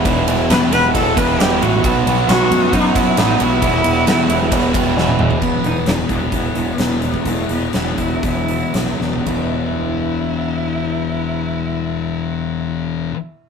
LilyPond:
<<
  \new Staff \with { instrumentName = "Cello" } { \time 4/4 \key e \minor \tempo 4 = 131 r4 b'8 b'8 a'8 b'8 g'8 fis'8 | r4 fis'4 dis'8 e'8 dis'8 e'8~ | e'2. r4 | r8 dis'8 dis'8 b2 b8 |
a8 b8 b8 e'8 e'4. r8 | e'1~ | e'1 | }
  \new Staff \with { instrumentName = "Clean electric guitar" } { \time 4/4 \key e \minor r1 | r1 | r1 | <e fis b e'>8 <fis b e'>8 <e fis b e'>8 <e fis b e'>8 <e fis b e'>8 <e fis b e'>8 <e fis b e'>8 <fis b e'>8 |
<e fis b e'>8 <fis b e'>8 <e fis b e'>8 <e fis b e'>8 <e fis b e'>8 <e fis b e'>8 <e fis b e'>8 <fis b e'>8 | <e g b e'>1~ | <e g b e'>1 | }
  \new Staff \with { instrumentName = "Distorted electric guitar" } { \clef bass \time 4/4 \key e \minor <e, b, e>8 <e, b, e>8 <e, b, e>8 <e, b, e>8 <e, b, e>8 <e, b, e>8 <e, b, e>8 <e, b, e>8 | <b, fis b>8 <b, fis b>8 <b, fis b>8 <b, fis b>8 <b, fis b>8 <b, fis b>8 <b, fis b>8 <b, fis b>8 | <e, b, e>8 <e, b, e>8 <e, b, e>8 <e, b, e>8 <e, b, e>8 <e, b, e>8 <e, b, e>8 <e, b, e>8 | <e, b, e>4 <e, b, e>8 <e, b, e>8 <e, b, e>4 <e, b, e>8 <e, b, e>8 |
<e, b, e>4 <e, b, e>8 <e, b, e>8 <e, b, e>4 <e, b, e>8 <e, b, e>8 | <e, b, e>1~ | <e, b, e>1 | }
  \new Staff \with { instrumentName = "Overdriven electric guitar" } { \clef bass \time 4/4 \key e \minor <e, b, e>8 <e, b, e>8 <e, b, e>8 <e, b, e>8 <e, b, e>8 <e, b, e>8 <e, b, e>8 <e, b, e>8 | <b, fis b>8 <b, fis b>8 <b, fis b>8 <b, fis b>8 <b, fis b>8 <b, fis b>8 <b, fis b>8 <b, fis b>8 | <e, b, e>8 <e, b, e>8 <e, b, e>8 <e, b, e>8 <e, b, e>8 <e, b, e>8 <e, b, e>8 <e, b, e>8 | r1 |
r1 | r1 | r1 | }
  \new Staff \with { instrumentName = "Fingered electric bass" } { \clef bass \time 4/4 \key e \minor e,,8 e,,8 e,8 e,,8 e,,8 e,,8 e,,8 a,,8 | b,,8 b,,8 b,,8 fis,8 fis,8 fis,8 a,,8 b,,8 | e,,8 e,,8 e,8 e,,8 e,,8 e,,8 e,,8 e,,8 | e,,8 e,,8 e,,8 e,,8 e,,8 e,,8 e,,4 |
e,,8 e,,8 e,,8 e,,8 e,,4 b,,8 e,,8 | e,,1~ | e,,1 | }
  \new DrumStaff \with { instrumentName = "Drums" } \drummode { \time 4/4 <bd cymr>8 cymr8 <cymr sn>8 cymr8 <bd cymr>8 <bd cymr>8 <cymr sn>8 cymr8 | <bd cymr>8 cymr8 <cymr sn>8 cymr8 <bd cymr>8 <bd cymr>8 <cymr sn>8 cymr8 | <bd cymr>8 cymr8 <cymr sn>8 cymr8 <bd cymr>8 <bd cymr>8 sn16 tommh16 toml16 tomfh16 | <cymc bd>8 hh8 <hh sn>8 <hh bd>8 <hh bd>8 hh8 <hh sn>8 hh16 bd16 |
<hh bd>8 hh8 <hh sn>8 <hh bd>8 <hh bd>8 hh8 <hh sn>8 sn16 tomfh16 | <bd cymr>4 r4 r4 r4 | r4 r4 r4 r4 | }
>>